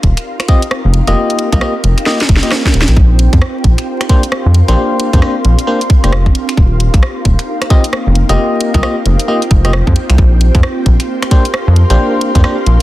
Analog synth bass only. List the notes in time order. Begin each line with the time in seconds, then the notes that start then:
0.03 D#1
0.85 F1
1.07 F1
1.53 C2
1.84 F1
2.29 F1
2.74 D#1
2.88 A#1
2.97 A#1
3.33 F2
3.64 A#1
4.46 F2
4.68 A#1
5.13 F2
5.45 A#1
6.04 F1
6.58 D#1
6.94 A#1
7.25 D#1
8.07 F1
8.29 F1
8.74 C2
9.06 F1
9.51 F1
9.87 F2
10.10 C2
10.18 A#1
10.55 F2
10.86 A#1
11.68 F2
11.90 A#1
12.35 F2
12.67 A#1